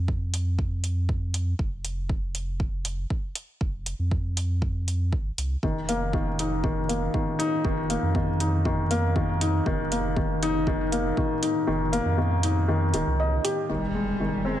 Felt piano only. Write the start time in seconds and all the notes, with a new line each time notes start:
5.64 D#3
5.89 A#3
6.14 D#3
6.40 D#4
6.64 D#3
6.89 A#3
7.14 D#3
7.39 D#4
7.64 D#3
7.90 A#3
8.15 D#3
8.40 D#4
8.66 D#3
8.91 A#3
9.16 D#3
9.41 D#4
9.66 D#3
9.92 A#3
10.17 D#3
10.43 D#4
10.68 D#3
10.92 A#3
11.18 D#3
11.43 D#4
11.67 D#3
11.93 A#3
12.18 D#3
12.44 D#4
12.68 D#3
12.94 D#3
13.20 D#5
13.44 G4
13.69 D#3
13.94 G#3
14.20 D#3
14.45 C4